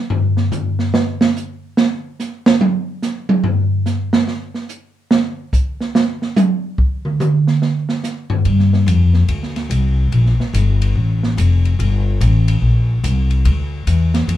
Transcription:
0.10 floor tom
0.37 snare
0.52 floor tom, hi-hat pedal
0.79 snare
0.94 snare
1.21 snare
1.36 hi-hat pedal
1.77 snare
2.20 snare, hi-hat pedal
2.46 snare
2.61 high tom
3.02 snare, hi-hat pedal
3.29 high tom
3.44 floor tom
3.86 snare, hi-hat pedal
4.13 snare
4.28 snare
4.54 snare
4.69 hi-hat pedal
5.11 snare
5.53 kick, hi-hat pedal
5.80 snare
5.95 snare
6.22 snare
6.37 hi-hat pedal, high tom
6.78 kick
7.05 mid tom
7.20 hi-hat pedal, mid tom
7.47 snare
7.62 snare
7.89 snare
8.04 snare, hi-hat pedal
8.30 floor tom
8.45 upright bass G2, ride
8.59 snare
8.73 snare
8.86 upright bass F2, hi-hat pedal, ride
9.13 snare
9.28 upright bass D2, ride
9.43 snare
9.56 snare, ride
9.70 upright bass C2, hi-hat pedal, ride
10.12 upright bass A#1, ride
10.26 snare
10.39 muted upright bass stroke, snare
10.53 upright bass G1, hi-hat pedal, ride
10.82 ride
10.95 upright bass A1
11.23 snare
11.37 upright bass F1, hi-hat pedal, ride
11.65 ride
11.79 upright bass G1, ride
12.21 upright bass A1, hi-hat pedal, ride
12.48 ride
12.62 upright bass A#1
13.03 upright bass C2, hi-hat pedal, ride
13.31 ride
13.45 upright bass D2, ride
13.87 upright bass E2, hi-hat pedal, ride
14.14 snare, ride
14.27 upright bass F2, ride

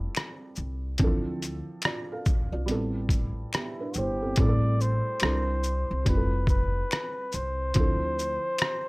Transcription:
Already playing: felt piano G3 C4 E4 F4 A4
0.15 finger snap, cross-stick, closed hi-hat
0.56 upright bass C2, shaker
0.98 upright bass D2, felt piano E3 C4 D4, kick, closed hi-hat
1.02 felt piano F3 E4 A4
1.43 closed hi-hat, shaker
1.82 felt piano D5, finger snap, cross-stick, closed hi-hat
1.86 felt piano F4
2.12 felt piano A4 F5
2.26 kick, shaker
2.52 upright bass C2, felt piano F4 D5
2.66 upright bass A1, felt piano G3 B3 C4, closed hi-hat
2.70 felt piano E4 A4
3.09 kick, closed hi-hat, shaker
3.53 felt piano B3 G4, flugelhorn E4, finger snap, cross-stick, closed hi-hat
3.80 felt piano D4 B4
3.94 upright bass G1, flugelhorn G4, felt piano C5, shaker
3.98 felt piano E4
4.22 felt piano C4 A4
4.36 upright bass A1, felt piano G3 A3, flugelhorn D5, kick, closed hi-hat
4.40 felt piano C4 E4 G#4
4.48 felt piano A4
4.81 flugelhorn C5, shaker
5.20 upright bass C2, felt piano G3 C4 D4, finger snap, cross-stick, closed hi-hat
5.24 felt piano E4 A4
5.31 felt piano A#4
5.63 shaker
5.91 upright bass C2
6.05 upright bass F1, felt piano G3 C4 E4, flugelhorn B4, kick, closed hi-hat
6.09 felt piano F4 G4
6.17 felt piano A4
6.47 flugelhorn B4, kick, shaker
6.91 finger snap, cross-stick, closed hi-hat
7.32 upright bass C2, flugelhorn C5, shaker
7.74 upright bass D2, felt piano F3 C4 D4, kick, closed hi-hat
7.78 felt piano E4 A4
8.19 shaker
8.58 finger snap, cross-stick, closed hi-hat

